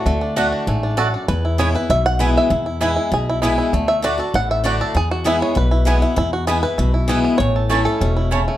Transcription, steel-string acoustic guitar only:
\new Staff \with { instrumentName = "Steel-string acoustic guitar" } { \time 4/4 \key e \mixolydian \tempo 4 = 196 << { r4 <d a d' fis'>4 r2 | r4 <e gis b e'>8 <b e'>8 r4 <e gis b e'>4 | r4 <e gis b e'>4 r4 <e gis b e'>4 | r4 <d a d' fis'>8 <d' fis'>8 r4 <d a d' fis'>4 |
r4 <e gis b e'>4 r4 <e gis b e'>8 <b e'>8 | r4 <e gis b e'>8 <b e'>8 r4 <e gis b e'>4 | r4 <e a cis' e'>8 <cis' e'>8 r2 | } \\ { d2 gis,4 fis,4 | e,2 b,2 | e,2 b,2 | d2 a,2 |
e,2 b,2 | e,2 b,2 | a,2 b,4 cis4 | } >> }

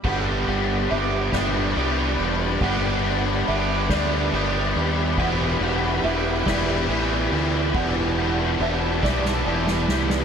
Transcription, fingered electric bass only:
\new Staff \with { instrumentName = "Fingered electric bass" } { \clef bass \time 6/8 \key g \major \tempo 4. = 47 g,,8 g,,8 g,,8 g,,8 c,8 e,,8 | g,,4 g,,8 d,8 g,,8 dis,8 | e,,8 e,,8 e,,8 e,,8 a,,8 d,8 | e,,4 e,,8 b,,8 e,,8 c,8 | }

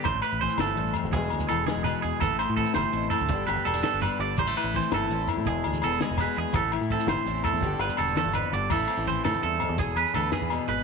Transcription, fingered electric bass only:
\new Staff \with { instrumentName = "Fingered electric bass" } { \clef bass \time 12/8 \key a \minor \tempo 4. = 111 a,,8 r16 a,,8 r16 g,,8 a,,8 r16 f,,16 e,,8 d,8 e,,8 r16 e,,8 r16 e,16 r16 | a,,8. a,8 r16 g,,16 r16 a,,8 r16 d,16 g,,8 g,,16 r16 e,,8 r16 g,,8 r16 g,,8 | a,,8 r16 a,,8 r16 g,,8 a,,8 r16 a,16 e,,8 d,8 e,,8 r16 e,,8 r16 e,16 r16 | a,,8. a,8 r16 g,,16 r16 a,,8 r16 e,16 g,,8 g,,16 r16 e,,8 r16 g,,8 r16 g,,8 |
a,,8 r16 a,,8. a,16 r16 e,8. e,16 e,,8 e,16 r16 d,8 r16 e,8 r16 gis,,8 | }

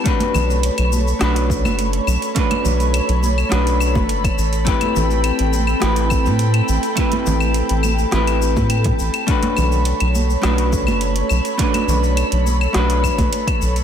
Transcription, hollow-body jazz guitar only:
\new Staff \with { instrumentName = "Hollow-body jazz guitar" } { \time 4/4 \key b \phrygian \tempo 4 = 104 <a cis' d' fis' b'>2 <a cis' d' fis' b'>2 | <a cis' d' fis' b'>2 <a cis' d' fis' b'>2 | <a c' e' g' b'>2 <a c' e' g' b'>2 | <a c' e' g' b'>2 <a c' e' g' b'>2 |
<a cis' d' fis' b'>2 <a cis' d' fis' b'>2 | <a cis' d' fis' b'>2 <a cis' d' fis' b'>2 | }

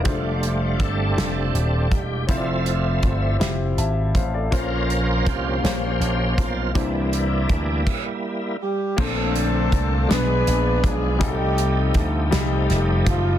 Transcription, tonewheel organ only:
<<
  \new Staff \with { instrumentName = "Tonewheel organ" } { \time 6/8 \key f \major \tempo 4. = 54 << { f'4 a'4. g'8 | f'4 r2 | bes'4 g'4. f'8 | e'2~ e'8 r8 |
<d bes c' aes' a'>4. <f b d' g' gis'>4. | <f a ees' g'>2. | } \\ { r4 <c' d'>4. r8 | a4. r4. | <des' f'>4 des'4. r8 | g2~ g8 r8 |
r2. | r2. | } >> }
  \new Staff \with { instrumentName = "Tonewheel organ" } { \time 6/8 \key f \major <g a d'>2. | <f c' e''>4. r4. | <f bes c''>2. | <e bes d'>4. r4. |
r2. | r2. | }
>>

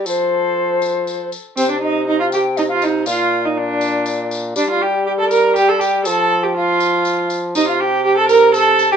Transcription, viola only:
\new Staff \with { instrumentName = "Viola" } { \time 3/4 \key c \dorian \tempo 4 = 120 a'2~ a'8 r8 | c'16 d'16 ees'8 ees'16 f'16 g'8 ees'16 f'16 ees'8 | f'8. ees'16 d'4. r8 | d'16 f'16 g'8 g'16 a'16 bes'8 g'16 a'16 g'8 |
a'8. g'16 f'4. r8 | ees'16 f'16 g'8 g'16 a'16 bes'8 a'8. g'16 | }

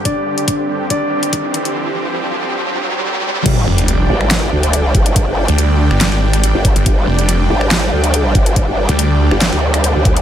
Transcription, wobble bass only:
\new Staff \with { instrumentName = "Wobble bass" } { \clef bass \time 4/4 \key c \minor \tempo 4 = 141 r1 | r1 | g,,8 r4 aes,,4 d,4 g,,8~ | g,,16 g,,8 r2 r8 g,,8 r16 |
g,,8 r4 aes,,4 d,4 g,,8~ | g,,16 g,,8 r4 g,,8 d,4 d,8. | }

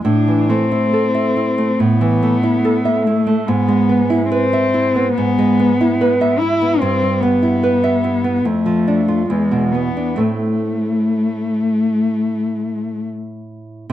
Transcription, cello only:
\new Staff \with { instrumentName = "Cello" } { \time 4/4 \key a \minor \tempo 4 = 70 d'8 c'4. b4. a8 | b4 c'4 b4. e'8 | c'8 b4. a4 gis8 b8 | a2. r4 | }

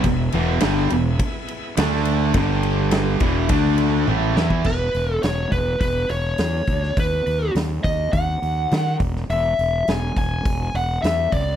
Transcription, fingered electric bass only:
\new Staff \with { instrumentName = "Fingered electric bass" } { \clef bass \time 4/4 \key b \dorian \tempo 4 = 104 e,,8 e,,8 g,,8 e,,8 r4 d,4 | g,,4. e,,8 d,4 a,,8 e,8 | e,,8 e,,8 e,,8 e,,8 e,,8 e,,8 e,8 d,8 | dis,8 dis,8 dis,8 dis,8 dis,8 dis,8 dis8 e,,8 |
e,,8 e,,8 e,,8 e,,8 e,,8 e,,8 e,8 cis,8 | }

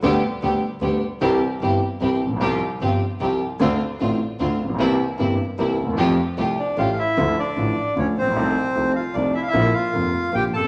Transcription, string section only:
\new Staff \with { instrumentName = "String section" } { \time 3/4 \key c \mixolydian \tempo 4 = 152 <b d' g'>8 r8 <b d' g'>8 r8 <b d' g'>8 r8 | <c' e' g'>8 r8 <c' e' g'>8 r8 <c' e' g'>8 r8 | <c' f' g'>8 r8 <c' f' g'>8 r8 <c' f' g'>8 r8 | <c' d' f'>8 r8 <c' d' f'>8 r8 <c' d' f'>8 r8 |
<bes c' e'>8 r8 <bes c' e'>8 r8 <bes c' e'>8 r8 | <a f' g'>8 r8 <a f' g'>8 r8 <a cis' g'>8 r8 | \key d \minor r2. | r2. |
r2. | }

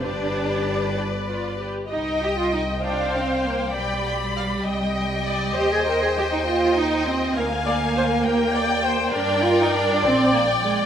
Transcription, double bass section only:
\new Staff \with { instrumentName = "Double bass section" } { \clef bass \time 6/8 \key c \minor \tempo 4. = 67 g,,2~ g,,8 r8 | c,2. | b,,4. c,4. | ees,2. |
d,4. ees,4. | \key g \phrygian g,4. bes,,4. | }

